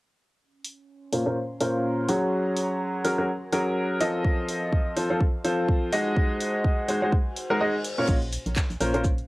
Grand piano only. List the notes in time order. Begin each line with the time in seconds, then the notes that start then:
1.13 A#2 C#4 F4 A#4 C5
1.26 A#2 C#4 F4 A#4 C5
1.61 A#2 C#4 F4 A#4 C5
2.08 F#3 C#4 F#4 G#4 C#5
3.04 F#3 C#4 F#4 G#4 A#4
3.18 F#3 C#4 F#4 G#4 A#4
3.52 F#3 C#4 F#4 G#4 A#4
4.00 F3 C4 F4 A4 D#5
4.96 F3 C4 F4 A4 C5
5.10 F3 C4 F4 A4 C5
5.44 F3 C4 F4 A4 C5
5.92 G#3 D#4 F#4 G#4 D#5
6.88 G#3 D#4 F#4 G#4 C5
7.02 G#3 D#4 F#4 G#4 C5
7.50 G#3 D#4 F#4 G#4 A#4
7.61 G#3 D#4 F#4 G#4 D#5
7.98 A#2 C#4 F4 A#4 C#5
8.81 A#2 C#4 F4 A#4 C5
8.94 A#2 C#4 F4 A#4 C5